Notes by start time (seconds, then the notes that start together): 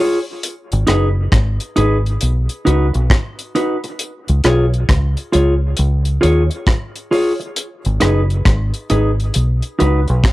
Already playing: F4
0.00 G#4 C#5, open hi-hat
0.43 closed hi-hat
0.72 G#1, closed hi-hat
0.87 F#1 D#4 G#4 B4, cross-stick, closed hi-hat
1.32 G#1, kick, cross-stick, closed hi-hat
1.60 closed hi-hat
1.76 G#1 D#4 G#4 B4, closed hi-hat
2.06 closed hi-hat
2.21 B1, closed hi-hat
2.49 closed hi-hat
2.65 C#2 D#4 F#4 B4, closed hi-hat
2.93 B1, muted clean electric guitar stroke, closed hi-hat
3.10 kick, cross-stick, closed hi-hat
3.39 closed hi-hat
3.55 D#4 F#4 B4, closed hi-hat
3.84 muted clean electric guitar stroke, closed hi-hat
3.99 closed hi-hat
4.28 C#2, closed hi-hat
4.44 B1 F4 G#4 C#5, cross-stick, closed hi-hat
4.74 closed hi-hat
4.89 C#2, kick, cross-stick, closed hi-hat
5.17 closed hi-hat
5.32 C#2 F4 G#4 C#5, closed hi-hat
5.77 C#2, closed hi-hat
6.05 closed hi-hat
6.21 D#2 F4 G#4 C#5, closed hi-hat
6.50 muted clean electric guitar stroke, closed hi-hat
6.67 kick, cross-stick, closed hi-hat
6.95 closed hi-hat
7.11 F4 G#4 C#5, open hi-hat
7.40 muted clean electric guitar stroke, closed hi-hat
7.56 closed hi-hat
7.85 G#1, closed hi-hat
8.00 F#1 D#4 G#4 B4, cross-stick, closed hi-hat
8.30 closed hi-hat
8.45 G#1, kick, cross-stick, closed hi-hat
8.74 closed hi-hat
8.90 G#1 D#4 G#4 B4, closed hi-hat
9.20 closed hi-hat
9.34 B1, closed hi-hat
9.62 closed hi-hat
9.79 C#2 D#4 F#4 B4, closed hi-hat
10.08 B1, muted clean electric guitar stroke, closed hi-hat
10.24 kick, cross-stick, closed hi-hat